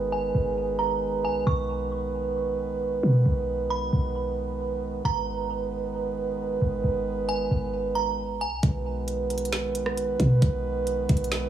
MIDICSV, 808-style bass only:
0, 0, Header, 1, 2, 480
1, 0, Start_track
1, 0, Key_signature, 5, "major"
1, 0, Tempo, 447761
1, 1573, Time_signature, 4, 2, 24, 8
1, 12319, End_track
2, 0, Start_track
2, 0, Title_t, "808-style bass"
2, 0, Program_c, 0, 38
2, 0, Note_on_c, 0, 32, 111
2, 343, Note_off_c, 0, 32, 0
2, 372, Note_on_c, 0, 32, 105
2, 1332, Note_on_c, 0, 35, 103
2, 1348, Note_off_c, 0, 32, 0
2, 1560, Note_off_c, 0, 35, 0
2, 1572, Note_on_c, 0, 35, 107
2, 3209, Note_off_c, 0, 35, 0
2, 3252, Note_on_c, 0, 47, 107
2, 3483, Note_off_c, 0, 47, 0
2, 3492, Note_on_c, 0, 35, 109
2, 4183, Note_off_c, 0, 35, 0
2, 4211, Note_on_c, 0, 35, 104
2, 5369, Note_off_c, 0, 35, 0
2, 5411, Note_on_c, 0, 32, 109
2, 7049, Note_off_c, 0, 32, 0
2, 7093, Note_on_c, 0, 32, 99
2, 7323, Note_off_c, 0, 32, 0
2, 7332, Note_on_c, 0, 32, 105
2, 8023, Note_off_c, 0, 32, 0
2, 8053, Note_on_c, 0, 32, 103
2, 9012, Note_on_c, 0, 35, 95
2, 9028, Note_off_c, 0, 32, 0
2, 9240, Note_off_c, 0, 35, 0
2, 9252, Note_on_c, 0, 35, 108
2, 10889, Note_off_c, 0, 35, 0
2, 10931, Note_on_c, 0, 47, 106
2, 11162, Note_off_c, 0, 47, 0
2, 11172, Note_on_c, 0, 35, 105
2, 11863, Note_off_c, 0, 35, 0
2, 11893, Note_on_c, 0, 35, 103
2, 12319, Note_off_c, 0, 35, 0
2, 12319, End_track
0, 0, End_of_file